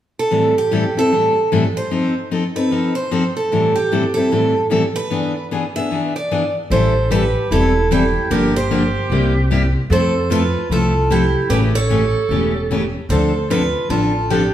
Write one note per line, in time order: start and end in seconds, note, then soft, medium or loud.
0.19 0.54 A4 medium
0.31 0.52 A2 medium
0.31 0.53 E3 medium
0.31 0.53 G3 medium
0.31 0.53 C4 medium
0.31 0.53 E4 medium
0.31 0.53 A4 medium
0.58 0.98 G4 medium
0.71 0.83 A2 medium
0.71 0.83 E3 medium
0.71 0.83 G3 medium
0.71 0.83 C4 medium
0.71 0.83 E4 medium
0.71 0.83 A4 medium
0.97 1.11 G3 soft
0.97 1.11 C4 soft
0.97 1.11 E4 soft
0.97 1.11 A4 soft
0.97 1.49 A4 medium
1.12 1.33 A2 medium
1.12 1.33 E3 medium
1.12 1.33 G3 medium
1.12 1.33 C4 medium
1.12 1.33 E4 medium
1.12 1.33 A4 medium
1.52 1.63 A2 medium
1.52 1.63 E3 medium
1.52 1.63 G3 medium
1.52 1.63 C4 medium
1.52 1.63 E4 medium
1.52 1.63 A4 medium
1.77 2.28 C5 medium
1.91 2.12 F3 medium
1.91 2.13 C4 medium
1.91 2.13 D#4 medium
1.91 2.13 A4 medium
2.31 2.42 F3 medium
2.31 2.43 C4 medium
2.31 2.43 D#4 medium
2.31 2.43 A4 medium
2.56 2.70 C4 soft
2.56 2.71 D#4 soft
2.56 2.70 A4 soft
2.56 2.95 B4 medium
2.71 2.92 F3 medium
2.71 2.93 C4 medium
2.71 2.93 D#4 medium
2.71 2.93 A4 medium
2.95 3.33 C5 medium
3.11 3.22 F3 medium
3.11 3.23 C4 medium
3.11 3.23 D#4 medium
3.11 3.23 A4 medium
3.37 3.76 A4 medium
3.52 3.73 A2 medium
3.52 3.73 E3 medium
3.52 3.73 G3 medium
3.52 3.73 C4 medium
3.52 3.73 E4 medium
3.52 3.73 A4 medium
3.76 4.17 G4 medium
3.92 4.03 A2 medium
3.92 4.03 E3 medium
3.92 4.03 G3 medium
3.92 4.03 C4 medium
3.92 4.03 E4 medium
3.92 4.03 A4 medium
4.14 4.31 G3 soft
4.14 4.31 C4 soft
4.14 4.31 E4 medium
4.14 4.66 A4 medium
4.14 4.31 A4 soft
4.31 4.52 A2 medium
4.31 4.53 E3 medium
4.31 4.53 G3 medium
4.31 4.53 C4 medium
4.31 4.53 E4 medium
4.31 4.53 A4 medium
4.70 4.82 A2 medium
4.70 4.82 E3 medium
4.70 4.82 G3 medium
4.70 4.82 C4 medium
4.70 4.82 E4 medium
4.70 4.82 A4 medium
4.96 5.47 B4 medium
5.10 5.32 E3 medium
5.10 5.32 B3 medium
5.10 5.32 D4 medium
5.10 5.33 G#4 medium
5.51 5.62 E3 medium
5.51 5.63 B3 medium
5.51 5.63 D4 medium
5.51 5.63 G#4 medium
5.76 5.90 B3 soft
5.76 5.90 D4 soft
5.76 5.90 G#4 medium
5.76 6.15 E5 medium
5.91 6.12 E3 medium
5.91 6.12 B3 medium
5.91 6.12 D4 medium
5.91 6.13 G#4 medium
6.16 6.53 D5 medium
6.31 6.42 E3 medium
6.31 6.42 B3 medium
6.31 6.42 D4 medium
6.31 6.42 G#4 medium
6.70 7.34 A1 medium
6.70 6.92 E3 medium
6.70 6.92 G3 medium
6.70 6.92 C4 medium
6.70 6.93 E4 medium
6.70 7.08 A4 medium
6.70 6.93 A4 medium
6.70 7.11 C5 medium
7.10 7.22 E3 medium
7.10 7.22 G3 medium
7.10 7.22 C4 medium
7.10 7.22 E4 medium
7.10 7.47 G4 medium
7.10 7.22 A4 medium
7.10 7.48 B4 medium
7.51 8.14 E1 medium
7.51 7.72 E3 medium
7.51 7.72 G3 medium
7.51 7.72 C4 medium
7.51 7.88 E4 medium
7.51 7.72 E4 medium
7.51 7.72 A4 medium
7.51 7.88 A4 medium
7.90 8.02 E3 medium
7.90 8.02 G3 medium
7.90 8.02 C4 medium
7.90 8.27 E4 medium
7.90 8.02 E4 medium
7.90 8.32 G4 medium
7.90 8.03 A4 medium
8.30 8.94 G1 medium
8.30 8.52 D3 medium
8.30 8.52 F3 medium
8.30 8.52 A#3 medium
8.30 8.52 D4 medium
8.30 8.54 G4 medium
8.30 8.52 G4 medium
8.30 8.56 A#4 medium
8.56 9.72 G4 medium
8.56 9.72 C5 medium
8.71 8.82 D3 medium
8.71 8.82 F3 medium
8.71 8.82 A#3 medium
8.71 8.82 D4 medium
8.71 8.82 G4 medium
9.10 9.74 C2 medium
9.10 9.32 C3 medium
9.10 9.32 G3 medium
9.10 9.32 A#3 medium
9.10 9.33 E4 medium
9.10 9.32 G4 medium
9.51 9.62 C3 medium
9.51 9.62 G3 medium
9.51 9.62 A#3 medium
9.51 9.62 E4 medium
9.51 9.62 G4 medium
9.90 10.54 F2 medium
9.90 10.12 F3 medium
9.90 10.12 A3 medium
9.90 10.12 C4 medium
9.90 10.12 E4 medium
9.90 10.28 A4 medium
9.90 10.12 A4 medium
9.90 10.29 C5 medium
10.30 10.41 F3 medium
10.30 10.42 A3 medium
10.30 10.42 C4 medium
10.30 10.42 E4 medium
10.30 10.67 F4 medium
10.30 10.42 A4 medium
10.30 10.68 B4 medium
10.70 11.34 C2 medium
10.70 10.92 F3 medium
10.70 10.92 A3 medium
10.70 10.92 C4 medium
10.70 10.92 E4 medium
10.70 11.07 F4 medium
10.70 10.92 A4 medium
10.70 11.12 A4 medium
11.10 11.21 F3 medium
11.10 11.21 A3 medium
11.10 11.21 C4 medium
11.10 11.47 E4 medium
11.10 11.22 E4 medium
11.10 11.48 G4 medium
11.10 11.22 A4 medium
11.49 12.13 A1 medium
11.49 11.71 C#3 medium
11.49 11.71 E3 medium
11.49 11.72 A3 medium
11.49 11.71 C#4 medium
11.49 11.61 G4 medium
11.49 11.72 G4 medium
11.49 11.57 B4 medium
11.75 12.90 A4 medium
11.75 12.91 C#5 loud
11.90 12.01 C#3 medium
11.90 12.01 E3 medium
11.90 12.01 A3 medium
11.90 12.02 C#4 medium
11.90 12.02 G4 medium
12.29 12.93 E1 medium
12.29 12.51 C#3 medium
12.29 12.52 E3 medium
12.29 12.52 A3 medium
12.29 12.52 C#4 medium
12.29 12.52 G4 medium
12.71 12.81 C#3 medium
12.71 12.81 E3 medium
12.71 12.82 A3 medium
12.71 12.82 C#4 medium
12.71 12.82 G4 medium
13.09 13.73 D2 medium
13.09 13.31 D3 medium
13.09 13.31 F3 medium
13.09 13.32 C4 medium
13.09 13.32 D4 medium
13.09 13.47 A4 medium
13.09 13.32 A4 medium
13.09 13.51 C5 medium
13.50 13.61 D3 medium
13.50 13.61 F3 medium
13.50 13.61 C4 medium
13.50 13.61 D4 medium
13.50 13.87 F4 medium
13.50 13.62 A4 medium
13.50 13.87 B4 medium
13.89 14.53 A1 medium
13.89 14.11 D3 medium
13.89 14.11 F3 medium
13.89 14.11 C4 medium
13.89 14.11 D4 medium
13.89 14.27 F4 medium
13.89 14.31 A4 medium
13.89 14.11 A4 medium
14.30 14.41 D3 medium
14.30 14.41 F3 medium
14.30 14.41 C4 medium
14.30 14.54 D4 medium
14.30 14.41 D4 medium
14.30 14.54 G4 medium
14.30 14.42 A4 medium